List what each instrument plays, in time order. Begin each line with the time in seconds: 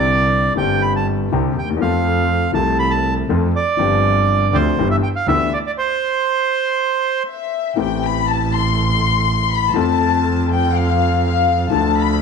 Already playing: double bass C2, grand piano C2 C3 D3 G3 C4 G4, bandoneon D5
0.55 double bass G1, grand piano G1 G2 D3 G3 C4, bandoneon G5
0.60 grand piano G4
0.82 bandoneon B5
0.96 bandoneon A5
1.32 double bass C2, grand piano C2 C3 D3 G3 C4 G4
1.56 double bass D#2, bandoneon G5
1.64 grand piano D2
1.70 grand piano D#2
1.77 grand piano E2
1.81 double bass F2, grand piano F2 F3 A3 C4 A4, bandoneon F5
2.53 double bass C2, grand piano C2 C3 F3 A3 C4, bandoneon A5
2.57 grand piano A4
2.79 bandoneon B5
2.91 bandoneon A5
3.29 double bass F2, grand piano F2 F3 A3 C4 A4
3.56 bandoneon D5
3.77 double bass G1, grand piano G1 G2 F3 C4 D4
3.81 grand piano G4
4.53 double bass D2, grand piano D2 D3 F3 C4 D4 G4, bandoneon C5
4.78 double bass G1, grand piano G1 G2 E3 B3 D4 G4
4.91 bandoneon E5
5.03 bandoneon G5
5.16 bandoneon F5
5.27 double bass D2, grand piano D2 D3 E3 B3 D4 G4, bandoneon E5
5.53 bandoneon D5
5.66 bandoneon D5
5.78 bandoneon C5
7.28 violin section E5
7.76 double bass A1, grand piano A1 A2 E3 A3 C4 G4, violin section G5
8.03 violin section B5
8.27 violin section A5
8.54 violin section C6
9.50 violin section B5
9.74 double bass F2, grand piano F2 F3 A3 C4, violin section A5
9.78 grand piano A4
10.51 violin section G5
10.75 violin section F5
11.25 violin section F5
11.70 grand piano D2 D3 F3 A3 D4, double bass D2, violin section A5
11.74 grand piano A4
11.98 violin section B5